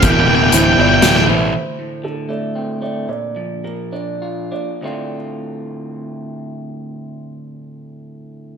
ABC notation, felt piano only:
X:1
M:3/4
L:1/8
Q:1/4=104
K:Dm
V:1 name="Felt piano"
B2 c d2 c | c2 A d2 d | d2 B d2 d | d z4 z |
z6 |]